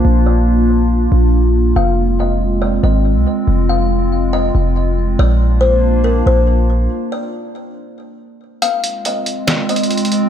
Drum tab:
HH |------------------------|------------------------|------------------------|------------------------|
SD |------------------------|------------------------|------------------------|------------------------|

HH |------------------------|x--x--x--x--x--xxxxxxx--|
SD |------------------------|------------o-----------|